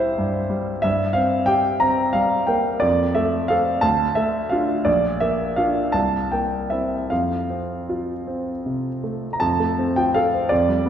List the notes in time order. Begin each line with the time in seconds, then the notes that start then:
Already playing: C2 E4 G4 C5 E5 F5 G5
0.18 G2
0.50 G3
0.82 G2 E5
1.13 C4 F5
1.46 G4 G5
1.80 C4 A#5
2.13 G3 F5
2.47 A#3 G5
2.80 F2 D5
3.15 A3 E5
3.48 C4 A4 F5
3.81 D2 A5
4.15 A3 E5
4.49 D4 F4 F5
4.85 A#1 D5
5.20 A#3 E5
5.56 D4 F4 F5
5.92 C2 A5
6.32 A#3 G5
6.70 C4 E4 E5
7.10 F2 F5
7.50 C4
7.89 F4
8.27 C4
8.66 C3
9.04 A3
9.33 A#5
9.40 F2 A5
9.60 A3
9.78 C4
9.96 F4 G5
10.14 A4 F5
10.34 C5
10.49 F2 D5
10.69 G3
10.86 B3